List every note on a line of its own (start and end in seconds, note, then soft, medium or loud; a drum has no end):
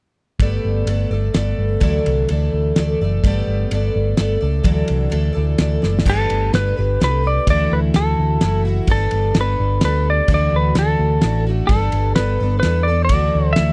0.39 0.57 G1 medium
0.39 0.88 G3 medium
0.39 0.87 A3 medium
0.39 0.85 B3 medium
0.39 0.88 A4 medium
0.39 0.90 D5 medium
0.39 kick medium
0.39 ride soft
0.65 0.82 G1 medium
0.86 1.04 G1 medium
0.86 1.12 A3 medium
0.86 1.11 B3 medium
0.86 1.11 A4 medium
0.86 1.10 D5 medium
0.86 ride medium
1.10 1.28 G1 medium
1.10 1.34 A3 soft
1.10 1.34 A4 soft
1.10 1.35 D5 soft
1.34 1.52 G1 medium
1.34 1.82 A3 medium
1.34 1.81 B3 medium
1.34 1.83 A4 medium
1.34 1.82 D5 medium
1.34 snare medium
1.34 ride medium
1.58 1.76 G1 medium
1.80 1.99 D2 medium
1.80 2.29 D3 medium
1.80 2.28 E3 medium
1.80 2.29 F#3 medium
1.80 2.29 A3 medium
1.80 2.30 A4 medium
1.80 2.32 D5 medium
1.80 kick medium
1.80 ride medium
2.06 2.24 C2 medium
2.06 ride medium
2.29 2.48 D2 medium
2.29 2.75 E3 medium
2.29 2.77 A3 medium
2.29 2.78 A4 medium
2.29 2.79 D5 medium
2.29 ride soft
2.53 2.71 D2 medium
2.76 2.95 D2 medium
2.76 3.00 E3 medium
2.76 3.01 A3 medium
2.76 3.01 A4 medium
2.76 3.00 D5 medium
2.76 snare medium
2.76 ride soft
3.01 3.18 F#1 medium
3.01 3.25 E3 soft
3.01 3.25 A3 soft
3.01 3.25 A4 soft
3.01 3.25 D5 soft
3.24 3.41 G1 medium
3.24 3.71 G3 medium
3.24 3.72 A3 medium
3.24 3.70 B3 medium
3.24 3.74 A4 medium
3.24 3.74 D5 medium
3.24 kick medium
3.24 ride soft
3.47 3.65 G1 medium
3.71 3.89 G1 medium
3.71 4.18 A3 medium
3.71 4.16 B3 medium
3.71 4.19 A4 medium
3.71 4.20 D5 medium
3.71 ride medium
3.96 4.13 G1 medium
4.17 4.36 G1 medium
4.17 4.42 A3 medium
4.17 4.42 B3 medium
4.17 4.41 A4 medium
4.17 4.39 D5 medium
4.17 snare medium
4.17 ride soft
4.41 4.60 C#2 medium
4.41 4.64 A3 soft
4.41 4.64 A4 soft
4.41 4.64 D5 medium
4.64 4.82 D2 medium
4.64 5.12 D3 medium
4.64 5.08 E3 medium
4.64 5.12 F#3 medium
4.64 5.10 A3 medium
4.64 5.10 A4 medium
4.64 5.11 D5 medium
4.64 kick medium
4.64 ride soft
4.88 5.07 C2 medium
4.88 ride medium
5.10 5.30 D2 medium
5.10 5.35 E3 medium
5.10 5.34 A3 medium
5.10 5.33 A4 medium
5.10 5.32 D5 medium
5.10 ride medium
5.33 5.57 E3 soft
5.33 5.58 A3 soft
5.33 5.59 A4 soft
5.33 5.58 D5 soft
5.37 5.54 D2 medium
5.58 5.77 D2 medium
5.58 5.82 E3 medium
5.58 5.83 A3 medium
5.58 5.82 A4 medium
5.58 5.81 D5 medium
5.58 snare medium
5.58 ride medium
5.82 6.01 F#1 medium
5.82 6.06 E3 soft
5.82 6.05 A3 soft
5.82 6.07 A4 soft
5.82 6.06 D5 soft
5.82 snare soft
5.99 snare medium
6.05 6.25 G1 medium
6.05 6.53 G3 medium
6.05 6.52 A3 medium
6.05 6.54 D4 medium
6.05 6.54 G4 medium
6.05 6.55 B4 medium
6.05 kick medium
6.05 crash medium
6.10 6.55 A4 medium
6.30 6.49 G1 medium
6.30 ride medium
6.53 6.72 G1 medium
6.53 6.77 A3 soft
6.53 6.77 D4 medium
6.53 6.77 G4 medium
6.53 7.03 B4 medium
6.53 6.75 B4 soft
6.53 snare medium
6.53 ride soft
6.76 6.97 G1 medium
6.76 7.00 D4 soft
6.76 7.01 G4 soft
6.76 7.00 B4 soft
7.00 7.38 C2 medium
7.00 7.24 A3 soft
7.00 7.24 D4 medium
7.00 7.24 G4 medium
7.00 7.22 B4 medium
7.00 7.27 B4 medium
7.00 snare medium
7.00 ride soft
7.23 7.49 D4 soft
7.23 7.48 G4 soft
7.23 7.47 B4 soft
7.23 7.49 D5 medium
7.47 7.66 D2 medium
7.47 7.95 D3 medium
7.47 7.93 E3 medium
7.47 7.94 A3 medium
7.47 7.95 E4 medium
7.47 7.96 F#4 medium
7.47 7.73 D5 medium
7.47 kick medium
7.47 ride medium
7.72 7.90 D2 medium
7.72 7.79 B4 medium
7.94 8.14 D2 medium
7.94 8.41 E3 medium
7.94 8.43 A3 soft
7.94 8.42 E4 medium
7.94 8.43 F#4 medium
7.94 8.62 A4 medium
7.94 snare medium
7.94 ride medium
8.19 8.37 D2 medium
8.41 8.79 F#1 medium
8.41 8.65 E3 soft
8.41 8.66 A3 soft
8.41 8.66 E4 medium
8.41 snare medium
8.41 ride soft
8.45 8.64 F#4 medium
8.65 8.89 A3 soft
8.65 8.89 E4 soft
8.65 8.89 F#4 medium
8.87 9.06 G1 medium
8.87 9.34 G3 medium
8.87 9.36 B3 medium
8.87 9.37 D4 medium
8.87 kick medium
8.87 ride medium
8.91 9.38 A4 medium
9.11 9.31 G1 medium
9.11 ride medium
9.35 9.54 G1 medium
9.35 9.81 G3 medium
9.35 9.82 B3 medium
9.35 9.84 D4 medium
9.35 snare medium
9.35 ride medium
9.39 9.84 A4 medium
9.39 9.84 B4 medium
9.60 9.78 G1 medium
9.81 10.20 D2 medium
9.81 10.29 G3 soft
9.81 10.30 B3 medium
9.81 10.31 D4 medium
9.81 10.32 A4 medium
9.81 10.08 B4 medium
9.81 snare medium
9.81 ride medium
10.10 10.30 D5 medium
10.28 10.47 D2 medium
10.28 10.77 D3 medium
10.28 10.75 E3 medium
10.28 10.77 A3 medium
10.28 10.78 D4 medium
10.28 kick medium
10.28 ride medium
10.32 10.78 F#4 medium
10.32 10.56 D5 medium
10.53 10.71 D2 medium
10.53 10.77 B4 medium
10.75 10.95 D2 medium
10.75 11.22 E3 soft
10.75 11.23 A3 medium
10.75 11.25 D4 soft
10.75 11.44 A4 medium
10.75 snare medium
10.75 ride medium
10.80 11.25 F#4 medium
10.99 11.18 D2 medium
11.21 11.60 A1 medium
11.21 11.47 E3 soft
11.21 11.47 A3 soft
11.21 11.48 D4 medium
11.21 snare medium
11.21 ride soft
11.27 11.45 F#4 medium
11.47 11.70 A3 soft
11.47 11.70 D4 soft
11.47 11.70 F#4 soft
11.67 11.88 G1 medium
11.67 12.14 G3 medium
11.67 12.16 B3 medium
11.67 12.18 D4 medium
11.67 12.15 A4 medium
11.67 kick loud
11.67 ride soft
11.72 12.19 A4 medium
11.92 12.12 G1 medium
11.92 ride medium
12.16 12.36 G1 medium
12.16 12.40 G3 soft
12.16 12.41 B3 medium
12.16 12.41 D4 medium
12.16 12.58 B4 medium
12.16 snare medium
12.16 ride medium
12.20 12.39 A4 medium
12.40 12.59 G1 medium
12.40 12.64 B3 soft
12.40 12.64 D4 soft
12.40 12.64 A4 soft
12.60 12.86 B4 medium
12.60 snare medium
12.60 ride medium
12.64 13.10 E2 medium
12.64 12.87 G3 soft
12.64 12.88 B3 medium
12.64 12.88 D4 medium
12.64 12.87 A4 medium
12.83 13.03 D5 medium
12.88 13.11 B3 soft
12.88 13.11 D4 soft
12.88 13.11 A4 soft
13.05 13.56 D5 medium
13.09 13.29 D2 medium
13.09 13.58 D3 medium
13.09 13.56 E3 medium
13.09 13.59 A3 medium
13.09 13.60 D4 medium
13.09 13.59 F#4 medium
13.09 kick medium
13.09 ride medium
13.35 13.53 D2 medium
13.53 13.73 E5 medium
13.53 snare medium
13.53 ride medium
13.58 13.73 D2 medium
13.58 13.73 E3 medium
13.58 13.73 A3 medium
13.58 13.73 D4 medium
13.58 13.73 F#4 medium